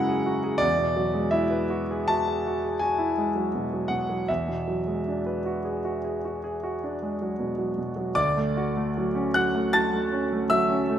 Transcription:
0.00 0.58 F#2 medium
0.00 0.65 C#3 soft
0.00 0.65 F#3 soft
0.00 0.65 G#3 soft
0.00 0.20 E4 soft
0.00 0.62 F#5 medium
0.00 0.65 A#5 loud
0.09 0.38 G#4 soft
0.26 0.55 F#4 soft
0.44 0.62 G#4 soft
0.58 4.23 E2 medium
0.58 1.31 D5 loud
0.78 1.07 B2 soft
0.96 1.25 F#3 soft
1.14 1.43 G#3 soft
1.31 1.63 E4 soft
1.31 2.09 E5 medium
1.51 1.83 B4 soft
1.70 2.02 F#4 soft
1.91 2.21 G#4 soft
2.08 2.39 F#4 soft
2.08 2.80 A5 medium
2.28 2.56 G#4 soft
2.47 2.75 F#4 soft
2.63 2.91 G#4 soft
2.79 3.10 F#4 soft
2.79 3.90 G#5 medium
2.98 3.27 E4 soft
3.18 3.46 G#3 soft
3.35 3.65 F#3 soft
3.55 3.84 B2 soft
3.73 4.03 F#3 soft
3.88 4.21 B2 soft
3.88 4.27 F#5 medium
4.10 4.29 F#3 soft
4.28 8.14 E2 medium
4.28 7.78 E5 medium
4.48 4.79 B2 soft
4.67 4.98 F#3 soft
4.87 5.18 G#3 soft
5.08 5.39 D4 soft
5.26 5.58 B4 soft
5.46 5.78 F#4 soft
5.65 5.97 G#4 soft
5.85 6.17 F#4 soft
6.04 6.36 G#4 soft
6.25 6.56 F#4 soft
6.44 6.75 G#4 soft
6.63 6.94 F#4 soft
6.84 7.14 D4 soft
7.02 7.33 G#3 soft
7.22 7.52 F#3 soft
7.40 7.70 B2 soft
7.58 7.89 F#3 soft
7.78 8.10 B2 soft
7.96 8.17 F#3 soft
8.15 10.99 D2 medium
8.15 9.30 D5 medium
8.15 9.34 D6 medium
8.37 8.69 A3 soft
8.57 8.89 F#4 soft
8.77 9.08 A3 soft
8.97 9.28 F#3 soft
9.15 9.46 C#4 soft
9.34 9.66 F#3 soft
9.34 9.71 F#5 medium
9.34 9.73 F#6 medium
9.55 9.85 A3 soft
9.73 10.04 F#3 soft
9.73 10.46 A5 medium
9.73 10.50 A6 loud
9.94 10.24 A3 soft
10.12 10.43 C#4 soft
10.33 10.62 A3 soft
10.50 10.81 F#3 soft
10.50 10.99 E5 medium
10.50 10.99 E6 loud
10.69 10.99 C#4 soft
10.90 10.99 A3 soft

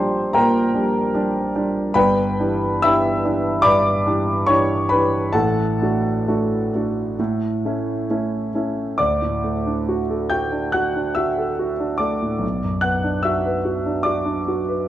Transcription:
0.00 1.98 A#1 medium
0.00 0.35 A#2 medium
0.00 0.74 G3 medium
0.00 0.75 D4 medium
0.00 0.75 G4 medium
0.00 0.31 C5 medium
0.00 1.99 D5 medium
0.00 0.33 A#5 medium
0.00 0.35 C6 medium
0.00 1.99 D6 loud
0.33 0.74 A#2 medium
0.33 1.92 A#4 medium
0.33 1.92 G5 medium
0.33 1.95 A#5 loud
0.74 1.11 G3 soft
0.74 1.11 D4 medium
0.74 1.11 G4 medium
1.15 1.51 G3 medium
1.15 1.51 D4 medium
1.15 1.51 G4 medium
1.55 1.92 G3 medium
1.55 1.92 D4 medium
1.55 1.92 G4 medium
1.94 2.38 G1 medium
1.94 2.38 G2 medium
1.94 2.80 B4 medium
1.94 2.80 G5 medium
1.94 2.81 B5 loud
2.40 2.80 E3 soft
2.40 2.80 D4 soft
2.40 2.80 G4 medium
2.82 3.21 E3 medium
2.82 3.21 D4 medium
2.82 3.21 G4 medium
2.82 3.60 E5 loud
2.82 3.60 B5 medium
2.82 3.63 E6 loud
3.25 3.60 E3 medium
3.25 3.60 D4 medium
3.25 3.61 G4 medium
3.62 4.04 G2 medium
3.62 4.43 D5 medium
3.62 4.42 B5 medium
3.62 4.46 D6 loud
4.06 4.44 E3 soft
4.06 4.44 D4 medium
4.06 4.44 G4 medium
4.47 4.87 E3 medium
4.47 4.87 D4 medium
4.47 4.87 G4 medium
4.47 4.87 C#5 medium
4.47 4.90 C#6 loud
4.89 5.31 E3 medium
4.89 5.32 D4 soft
4.89 5.32 G4 medium
4.89 5.32 B4 medium
4.89 5.34 B5 loud
5.33 5.79 A1 medium
5.33 5.79 A2 medium
5.33 8.49 A4 medium
5.33 8.49 F#5 medium
5.33 8.52 A5 medium
5.82 6.23 A3 soft
5.82 6.23 D4 soft
5.82 6.24 F#4 soft
6.28 6.69 A3 soft
6.28 6.70 D4 soft
6.28 6.70 F#4 medium
6.75 7.15 A3 soft
6.75 7.16 D4 soft
6.75 7.16 F#4 soft
7.20 7.63 A2 medium
7.65 8.05 A3 soft
7.65 8.06 C#4 soft
7.65 8.05 E4 medium
8.10 8.50 A3 soft
8.10 8.51 C#4 soft
8.10 8.51 E4 medium
8.55 8.95 A3 soft
8.55 8.95 C#4 soft
8.55 8.96 E4 medium
8.98 12.39 D2 medium
8.98 10.28 D5 medium
8.98 10.31 D6 loud
9.22 9.57 A2 soft
9.44 9.79 A3 soft
9.67 10.01 D4 soft
9.89 10.23 F#4 soft
10.11 10.45 A4 soft
10.30 10.66 F#4 soft
10.30 10.71 G5 medium
10.30 10.74 G6 medium
10.52 10.87 D4 soft
10.72 11.08 F#4 medium
10.72 11.13 F#5 medium
10.72 11.15 F#6 medium
10.96 11.29 D4 soft
11.15 11.50 F#4 soft
11.15 11.96 E5 medium
11.15 12.00 E6 medium
11.38 11.72 A4 soft
11.59 11.93 F#4 medium
11.80 12.14 D4 soft
11.98 12.34 A3 soft
11.98 12.80 D5 medium
11.98 12.83 D6 medium
12.22 12.43 A2 soft
12.39 14.88 B1 medium
12.64 12.97 F#2 soft
12.81 13.17 B3 soft
12.81 13.21 F#5 medium
12.81 13.24 F#6 medium
13.04 13.37 D4 soft
13.23 13.57 F#4 medium
13.23 14.02 E5 medium
13.23 14.05 E6 medium
13.46 13.78 B4 soft
13.65 13.98 F#4 soft
13.86 14.19 D4 soft
14.03 14.39 F#4 medium
14.03 14.88 D5 medium
14.03 14.88 D6 medium
14.26 14.60 D4 soft
14.48 14.81 F#4 soft
14.69 14.88 B4 soft

